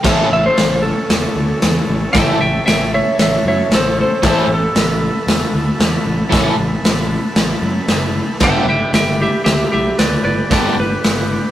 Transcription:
0.04 A1 A2 E3 A3 C#4 E4 A4, kick, snare, crash
0.31 A1 E5
0.46 C5
0.57 A1, snare, open hi-hat
0.82 A4
1.09 E1, snare, open hi-hat
1.35 D2
1.62 E2, snare, open hi-hat
1.89 A1
2.13 A1 A2 E3 A3 C#4 E5 G5, kick, snare, open hi-hat
2.17 A4
2.41 A1 E5 G5
2.66 A1 E5 G5, snare, open hi-hat
2.94 C#5 E5
3.19 A1 C#5 E5, snare, open hi-hat
3.45 F#2 C#5 E5
3.70 A1, snare, open hi-hat
3.74 A4 C5
4.01 A4 C5
4.23 A1 A2 E3 A3 C#4 E4 A4 B4, kick, snare, open hi-hat
4.29 A4 C5
4.48 A1
4.54 A4
4.75 A1, snare, open hi-hat
5.27 E1, snare, open hi-hat
5.53 D2
5.80 E2, snare, open hi-hat
6.06 A1
6.30 A1 A2 E3 A3 C#4 A4, kick, snare, open hi-hat
6.59 A1
6.84 A1, snare, open hi-hat
7.36 A1, snare, open hi-hat
7.62 F#2
7.88 F#1, snare, open hi-hat
8.40 G1 G2 D3 G3 B3 D4 G4 B4 E5, kick, snare, crash
8.44 G5
8.65 G1 E5
8.70 G5
8.93 G1 E5 G5, snare, open hi-hat
9.22 G4 E5
9.44 D2 G4 E5, snare, open hi-hat
9.72 B1 G4 E5
9.98 D2 B4 D5, snare, open hi-hat
10.24 G1 B4 D5
10.51 G1 G2 D3 G3 B3 D4 G4 B4 D5, kick, snare, open hi-hat
10.79 G1 B4
11.04 G1, snare, open hi-hat

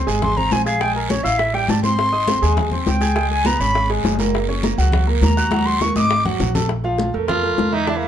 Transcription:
0.07 G#1 G#3 G#4 G#5, high conga, short guiro
0.22 C6, high bongo, high conga, low conga, long guiro
0.37 C4 C5 A#5 C6, high bongo, high conga, low conga
0.51 A#1 G#5, high bongo, low bongo, high conga, short guiro
0.66 G#4 F5 G#5 G#6, high bongo, short guiro
0.80 G#3 G#4 G5 G#5, high bongo, high conga, long guiro
0.95 A#4, high bongo, high conga
1.10 C#4 C#5 C#6, high bongo, high conga, short guiro
1.24 A1 E4 E5 F5 E6, short guiro
1.39 E5, high bongo, high conga, long guiro
1.53 G3 G4 G5, high bongo, high conga
1.68 G#1 A5, high bongo, low bongo, high conga, short guiro
1.83 C4 C5 C6, high bongo, high conga, short guiro
1.98 high bongo, high conga, long guiro
2.12 D#4 D#5 D#6, high bongo, high conga
2.27 C4 C5 C6, high bongo, high conga, short guiro
2.42 D#2 G#3 G#4 G#5, high conga, short guiro
2.57 high bongo, high conga, low conga, long guiro
2.71 C4 C5 C6, high bongo, high conga, low conga
2.86 C#2 G5, high bongo, low bongo, high conga, short guiro
3.01 G#4 G#5 G#6, high bongo, high conga, short guiro
3.15 G#3 G#4 G#5, high bongo, high conga, long guiro
3.30 G#5, high bongo, high conga
3.45 B3 B4 A#5 B5, high bongo, high conga, short guiro
3.59 G#1 C#4 C#5 B5 C#6, short guiro
3.74 high bongo, high conga, long guiro
3.89 G#3 G#4 G#5, high bongo, high conga
4.04 F#1, high bongo, low bongo, high conga, short guiro
4.19 A#3 A#4 A#5, high bongo, high conga, short guiro
4.34 high bongo, high conga, long guiro
4.48 C#4 C#5 C#6, high bongo, high conga
4.63 A#3 A#4 A#5, high bongo, high conga, short guiro
4.78 C#2 F#3 F#4 F#5, high conga, short guiro
4.92 high bongo, high conga, low conga, long guiro
5.07 A#3 A#4 A#5, high bongo, high conga
5.21 D#2 A#5, high bongo, low bongo, high conga, short guiro
5.37 F#4 F#5 F#6, high bongo, short guiro
5.51 F#3 F#4 F#5, high bongo, high conga, long guiro
5.66 C6, high bongo
5.81 A#3 A#4 A#5 C#6, high bongo, high conga, short guiro
5.95 G#1 D#4 D#5 D6 D#6, high conga, short guiro
6.11 high bongo, long guiro
6.25 F#3 F#4 F#5, high bongo, low conga
6.40 A#1, high bongo, low bongo, low conga, short guiro
6.55 A3 A4 A5, high bongo, low conga, short guiro
6.69 high bongo, high conga
6.84 F3 F4 F5, high bongo, high conga
6.98 high bongo, high conga
7.14 F2 A3 A4 A#4, high conga
7.28 A3 F4 A4 A#4, high bongo, high conga, low conga
7.43 A3 A4 A#4, high bongo, high conga
7.58 E2, high bongo, low bongo, high conga
7.72 E3 D#4 E4 E5, high bongo
7.87 E3 D4 E4 E5, high bongo, high conga
7.97 A#3
8.03 high bongo, high conga

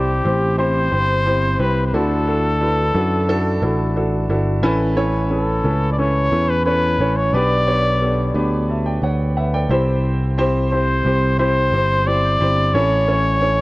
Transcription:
Already playing: C2 C3 C4 E4 G4 C5 D5
0.25 A1 C4 E4 G4 C5
0.58 C4 E4 G4 C5
0.92 G1 C4 E4 G4 C5
1.26 C4 E4 G4 C5
1.59 C2 C4 E4 G4 B4 C5
1.87 B4
1.94 D2 D3 D4 E4 F#4 A4
2.27 D4 E4 F#4 A4
2.61 D4 E4 F#4 B4
2.95 F#2 D4 E4 F#4 A4
3.28 D4 E4 F#4 A4
3.62 A1 D4 E4 F#4 A4
3.96 D4 E4 F#4 A4
4.29 G1 D4 E4 F#4 A4
4.63 A1 A2 C#4 E4 A4 B4
4.97 C#4 E4 A4 C#5
5.30 C#4 E4 A4 B4
5.64 C#2 C#4 E4 A4 B4
5.92 D5
5.98 C#4 E4 A4 B4 C#5
6.32 E2 C#4 E4 A4 B4
6.49 B4
6.66 C#4 E4 A4 B4 C#5
6.99 A1 C#4 E4 A4 C#5
7.16 C#5
7.33 B1 B2 B3 D4 G4 B4 D5
7.67 B3 D4 G4 C#5
8.01 B3 D4 G4 A4
8.34 D2 B3 D4 G4 B4
8.69 E5 A5
8.86 D5 G5
9.02 D2 C#5 F#5
9.37 B4 E5 F#5
9.54 A4 D5 G5
9.69 C2 C3 C4 E4 G4 C5
10.38 C4 E4 G4 C5
10.72 C4 E4 G4 C5
11.05 C2 C4 E4 G4 C5
11.39 C4 E4 G4 C5
11.72 G1 C4 E4 G4 C5
12.07 C4 E4 G4 C5 D5
12.40 G1 C4 E4 G4 C5
12.74 A1 A2 C#4 E4 A4 C#5
13.08 C#4 E4 A4 C#5
13.41 C#4 E4 A4 C#5

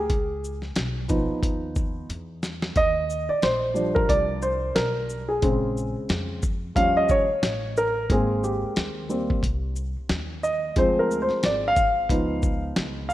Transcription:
Already playing: G#4
0.10 C#2, kick, closed hi-hat
0.44 shaker
0.62 snare
0.76 B1, snare, closed hi-hat
1.08 F3 B3 D#4, kick, closed hi-hat, shaker
1.30 muted upright bass stroke
1.43 D#2, kick, closed hi-hat
1.76 kick, shaker
2.09 E2, closed hi-hat
2.43 snare, shaker
2.62 snare
2.76 D#2 D#5, kick, closed hi-hat
3.10 shaker
3.29 D5, muted upright bass stroke
3.42 A#1 C5, snare, closed hi-hat
3.74 F3 G3 D4, shaker
3.95 A#4, kick
4.09 C2 D5, kick, closed hi-hat
4.42 C5, shaker
4.75 B1 A#4, snare, closed hi-hat
5.10 shaker
5.29 G#4
5.42 A#1 C#3 G#3 C4, kick, closed hi-hat
5.77 shaker
5.96 muted upright bass stroke
6.09 F2, snare, closed hi-hat
6.43 kick, shaker
6.75 D#2 F3 G3 C#4 F5, kick, closed hi-hat
6.97 D#5
7.09 C#5, kick, shaker
7.29 muted upright bass stroke
7.42 A1, snare, closed hi-hat
7.77 A#4, shaker
8.09 G#1 G#3 A#3 C4 G#4, kick, closed hi-hat
8.44 G4, shaker
8.63 muted upright bass stroke
8.76 D#2, snare, closed hi-hat
9.09 G3 A#3 C4, shaker
9.30 kick
9.43 C2, kick, closed hi-hat
9.76 shaker
9.96 muted upright bass stroke
10.09 D#2, snare, closed hi-hat
10.43 D#5, shaker
10.76 D2 F3 G#3 C4 C5, kick, closed hi-hat
10.99 A#4
11.11 shaker
11.22 C5
11.29 muted upright bass stroke, snare
11.43 G#1 D5, snare, closed hi-hat
11.68 F5
11.76 kick, closed hi-hat, shaker
12.09 C#2 F3 B3 D#4, kick, closed hi-hat
12.43 kick, shaker
12.76 C#2, snare, closed hi-hat
13.09 F5, shaker

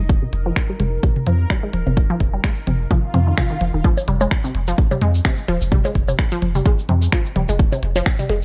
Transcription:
Already playing: D#4 D#5
0.00 F1
0.09 A#4, kick
0.23 C3
0.33 F1, closed hi-hat
0.46 F3
0.56 finger snap, kick
0.70 G3
0.80 F1 G#3, closed hi-hat, high tom
1.03 C3, kick
1.16 high tom
1.27 F2 F3, closed hi-hat
1.50 G3, finger snap, kick
1.63 G#3
1.73 D#1, closed hi-hat, low conga
1.87 F1 C3, high tom
1.97 kick
2.10 F3
2.20 F1, kick, closed hi-hat
2.33 G3
2.44 G#3, finger snap, kick
2.67 F1 C3, closed hi-hat, high tom, low conga
2.91 F3, kick, high tom, swell
3.14 F2 C4, closed hi-hat, high tom, low conga
3.27 D#3
3.38 F3, finger snap, kick, high tom
3.51 D#3
3.61 F1, closed hi-hat, low conga
3.74 D#1 D#3
3.84 F3, kick
3.97 high bongo, shaker
4.08 F1 G3, closed hi-hat, high tom
4.21 G#3, high bongo, shaker
4.31 finger snap, kick
4.44 C3, shaker
4.55 F1, closed hi-hat
4.68 F3, shaker
4.78 kick
4.91 G3, high tom, high bongo, shaker
5.02 F2 G#3, closed hi-hat
5.15 shaker
5.25 C3, finger snap, kick
5.38 shaker
5.48 D#1 F3, closed hi-hat, low conga
5.61 F1, shaker
5.72 G3, kick, high tom
5.85 G#3, high bongo, shaker
5.95 F1, kick, closed hi-hat
6.08 C3, high bongo, shaker
6.19 finger snap, kick
6.32 F3, shaker
6.42 F1, closed hi-hat, low conga
6.55 G3, high tom, shaker
6.66 G#3, kick
6.79 shaker
6.89 F2 C3, closed hi-hat, low conga
7.02 shaker
7.12 F3, finger snap, kick
7.26 shaker
7.36 D#1 G3, closed hi-hat, high tom, low conga
7.49 F1 G#3, shaker
7.59 kick
7.72 C3, high bongo, shaker
7.83 F1, closed hi-hat
7.96 F3, high bongo, shaker
8.06 finger snap, kick
8.19 G3, high tom, shaker
8.29 F1 G#3, closed hi-hat

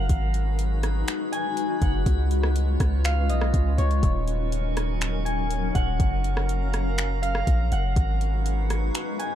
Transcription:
Already playing: F#5
0.09 G#1 G#3 D#4 F#4 G#4 B4 F#5 B5, kick, closed hi-hat
0.34 closed hi-hat
0.59 closed hi-hat
0.83 cross-stick, closed hi-hat
1.08 finger snap, closed hi-hat
1.32 G#5, closed hi-hat
1.57 closed hi-hat
1.82 F#1 F#5, kick, closed hi-hat
2.06 C#2 C#4 F4 C#5, kick, closed hi-hat
2.31 closed hi-hat
2.43 cross-stick
2.56 closed hi-hat
2.80 C#2, kick, cross-stick, closed hi-hat
3.05 F5, finger snap, closed hi-hat
3.29 B1 D#5, closed hi-hat
3.41 cross-stick
3.54 C#2, kick, closed hi-hat
3.78 C#2 C#5, closed hi-hat
3.91 closed hi-hat
4.03 D#1 F#3 D#4 F#4 A#4 D#5 C#6, kick, closed hi-hat
4.28 closed hi-hat
4.52 closed hi-hat
4.77 cross-stick, closed hi-hat
5.01 finger snap, closed hi-hat
5.25 G#5, closed hi-hat
5.50 closed hi-hat
5.75 D#1 F#5, kick, closed hi-hat
6.00 F#1 F#4 F5 A#5, kick, closed hi-hat
6.24 closed hi-hat
6.37 cross-stick
6.49 closed hi-hat
6.74 cross-stick, closed hi-hat
6.98 finger snap, closed hi-hat
7.22 F5, closed hi-hat
7.35 cross-stick
7.47 A#1, kick, closed hi-hat
7.72 F#1 F#5, closed hi-hat
7.96 G#1 G#3 D#4 F#4 G#4 B4 F#5 B5, kick, closed hi-hat
8.21 closed hi-hat
8.46 closed hi-hat
8.70 cross-stick, closed hi-hat
8.95 finger snap, closed hi-hat
9.19 G#5, closed hi-hat

